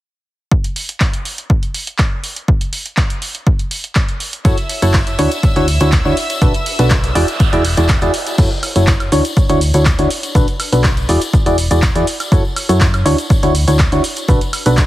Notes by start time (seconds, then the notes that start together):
0.51 kick
0.64 closed hi-hat
0.76 open hi-hat
0.89 closed hi-hat
1.00 kick, clap
1.14 closed hi-hat
1.25 open hi-hat
1.38 closed hi-hat
1.50 kick
1.63 closed hi-hat
1.74 open hi-hat
1.87 closed hi-hat
1.98 kick, clap
2.24 open hi-hat
2.36 closed hi-hat
2.48 kick
2.61 closed hi-hat
2.73 open hi-hat
2.86 closed hi-hat
2.97 kick, clap
3.10 closed hi-hat
3.22 open hi-hat
3.35 closed hi-hat
3.47 kick
3.59 closed hi-hat
3.71 open hi-hat
3.84 closed hi-hat
3.95 kick, clap
4.09 closed hi-hat
4.20 open hi-hat
4.33 closed hi-hat
4.45 F#1 E4 F#4 A4 C#5 E5 E6, kick, closed hi-hat, tambourine
4.57 closed hi-hat, tambourine
4.69 closed hi-hat, open hi-hat
4.82 F#1 E4 F#4 A4 C#5, closed hi-hat, tambourine
4.94 kick, snare, clap, open hi-hat
5.07 closed hi-hat, tambourine
5.19 D2 D4 E4 F#4 C#5, closed hi-hat, open hi-hat
5.32 closed hi-hat, tambourine
5.43 kick, closed hi-hat, tambourine
5.56 D2 D4 E4 F#4 C#5, snare, closed hi-hat, tambourine
5.68 closed hi-hat, open hi-hat
5.80 D2 D4 E4 F#4 C#5, snare, closed hi-hat, tambourine
5.92 kick, snare, clap, closed hi-hat, tambourine
6.05 D2 D4 E4 F#4 C#5, snare, tambourine
6.17 closed hi-hat, open hi-hat
6.30 closed hi-hat, tambourine
6.41 B1 D4 F#4 A4 B4, kick, closed hi-hat, tambourine, noise sweep
6.54 closed hi-hat, tambourine
6.66 closed hi-hat, open hi-hat
6.79 B1 D4 F#4 A4 B4, snare, closed hi-hat, tambourine
6.90 kick, snare, clap, closed hi-hat, tambourine
7.04 snare, closed hi-hat, tambourine
7.15 E1 E4 F#4 G#4 D5, snare, closed hi-hat, open hi-hat
7.28 closed hi-hat, tambourine
7.39 kick, closed hi-hat, tambourine
7.53 E1 E4 F#4 G#4 D5, closed hi-hat, tambourine
7.65 closed hi-hat, open hi-hat
7.77 E1 E4 F#4 G#4 D5, closed hi-hat, tambourine
7.89 kick, snare, clap, closed hi-hat, tambourine
8.01 E1 E4 F#4 G#4 D5, closed hi-hat, tambourine
8.14 closed hi-hat, open hi-hat
8.27 closed hi-hat, tambourine
8.38 F#1 E4 F#4 A4 C#5, kick, crash, tambourine, shaker
8.52 tambourine
8.63 open hi-hat, high woodblock, shaker
8.76 F#1 E4 F#4 A4 C#5, closed hi-hat, tambourine, shaker
8.87 kick, clap, shaker
9.00 closed hi-hat, tambourine, high woodblock
9.12 D2 D4 E4 F#4 C#5, open hi-hat, shaker
9.25 closed hi-hat, tambourine, shaker
9.36 kick, tambourine, shaker
9.49 D2 D4 E4 F#4 C#5, closed hi-hat, tambourine
9.61 open hi-hat, shaker
9.74 D2 D4 E4 F#4 C#5, closed hi-hat, tambourine, shaker
9.85 kick, clap, tambourine, shaker
9.99 D2 D4 E4 F#4 C#5, closed hi-hat, tambourine
10.10 open hi-hat, shaker
10.23 closed hi-hat, tambourine, shaker
10.35 B1 D4 F#4 A4 B4, kick, tambourine, shaker
10.48 closed hi-hat, tambourine
10.60 open hi-hat, high woodblock, shaker
10.72 B1 D4 F#4 A4 B4, closed hi-hat, tambourine, shaker
10.84 kick, clap, tambourine, shaker
10.97 closed hi-hat, tambourine
11.09 E1 E4 F#4 G#4 D5, open hi-hat, shaker
11.21 closed hi-hat, tambourine, shaker
11.33 kick, tambourine, shaker
11.46 E1 E4 F#4 G#4 D5, closed hi-hat, tambourine
11.58 open hi-hat, shaker
11.71 E1 E4 F#4 G#4 D5, closed hi-hat, tambourine, shaker
11.82 kick, clap, shaker
11.95 E2 E4 F#4 G#4 D5, closed hi-hat, tambourine
12.07 open hi-hat, shaker
12.20 closed hi-hat, tambourine, high woodblock, shaker
12.32 F#1 E4 F#4 A4 C#5, kick, shaker
12.45 tambourine
12.56 open hi-hat, high woodblock, shaker
12.69 F#2 E4 F#4 A4 C#5, closed hi-hat, tambourine, shaker
12.81 kick, clap, tambourine, shaker
12.94 closed hi-hat, tambourine, high woodblock
13.05 D2 D4 E4 F#4 C#5, open hi-hat, shaker
13.18 closed hi-hat, tambourine, shaker
13.30 kick, tambourine, shaker
13.43 D2 D4 E4 F#4 C#5, closed hi-hat, tambourine
13.55 open hi-hat, shaker
13.68 D2 D4 E4 F#4 C#5, closed hi-hat, tambourine, shaker
13.79 kick, clap, shaker
13.92 D2 D4 E4 F#4 C#5, closed hi-hat, tambourine
14.04 open hi-hat, shaker
14.16 closed hi-hat, tambourine, shaker
14.28 B1 D4 F#4 A4 B4, kick, tambourine, shaker
14.41 closed hi-hat, tambourine
14.53 open hi-hat, high woodblock, shaker
14.66 B1 D4 F#4 A4 B4, closed hi-hat, tambourine, shaker
14.77 kick, clap, shaker